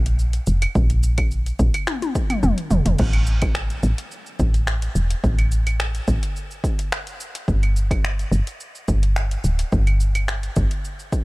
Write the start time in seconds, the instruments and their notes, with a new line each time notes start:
Already playing: fm bass A#1
0.06 closed hi-hat, cabasa
0.19 cabasa
0.33 closed hi-hat, cabasa
0.47 fm bass F1, cabasa
0.62 closed hi-hat, cabasa, claves
0.75 fm bass A#1, kick, cabasa
0.90 closed hi-hat, cabasa
1.03 cabasa
1.18 kick, closed hi-hat, cabasa, claves
1.31 cabasa
1.46 closed hi-hat, cabasa
1.59 fm bass A#1, kick, cabasa
1.74 closed hi-hat, cabasa, claves
1.87 finger snap, high tom, cabasa
2.02 closed hi-hat, high tom, cabasa
2.15 kick, cabasa
2.30 closed hi-hat, mid tom, cabasa, claves
2.43 fm bass F1, mid tom, cabasa
2.58 closed hi-hat, cabasa
2.71 fm bass F1, mid tom, cabasa
2.86 fm bass F1, closed hi-hat, mid tom, cabasa
2.99 fm bass A1, kick, crash, cabasa
3.13 closed hi-hat, cabasa, claves
3.27 cabasa
3.42 kick, closed hi-hat, cabasa, claves
3.55 finger snap, cabasa
3.70 closed hi-hat, cabasa
3.83 fm bass A1, cabasa
3.98 closed hi-hat, cabasa
4.11 cabasa
4.26 cabasa
4.39 fm bass A1, kick, cabasa
4.54 closed hi-hat, cabasa
4.67 finger snap, cabasa
4.82 closed hi-hat, cabasa
4.95 fm bass E1, cabasa
5.11 closed hi-hat, cabasa
5.24 fm bass A1, kick, cabasa
5.39 closed hi-hat, cabasa, claves
5.52 cabasa
5.67 closed hi-hat, cabasa, claves
5.80 finger snap, cabasa
5.95 closed hi-hat, cabasa
6.08 fm bass A1, kick, cabasa
6.23 closed hi-hat, cabasa
6.36 cabasa
6.51 cabasa
6.64 kick, cabasa
6.79 closed hi-hat, cabasa
6.92 finger snap, cabasa
7.07 closed hi-hat, cabasa
7.20 cabasa
7.35 closed hi-hat, cabasa
7.48 fm bass G1, kick, cabasa
7.63 closed hi-hat, cabasa, claves
7.76 cabasa
7.91 kick, closed hi-hat, cabasa, claves
8.05 finger snap, cabasa
8.19 closed hi-hat, cabasa
8.32 fm bass G1, cabasa
8.47 closed hi-hat, cabasa
8.60 cabasa
8.75 cabasa
8.88 fm bass G1, kick, cabasa
9.03 closed hi-hat, cabasa
9.16 finger snap, cabasa
9.31 closed hi-hat, cabasa
9.44 fm bass D1, cabasa
9.59 closed hi-hat, cabasa
9.72 fm bass G1, kick, cabasa
9.87 closed hi-hat, cabasa, claves
10.00 cabasa
10.15 closed hi-hat, cabasa, claves
10.28 finger snap, cabasa
10.43 closed hi-hat, cabasa
10.56 fm bass G1, kick, cabasa
10.71 closed hi-hat, cabasa
10.85 cabasa
10.99 cabasa
11.13 kick, cabasa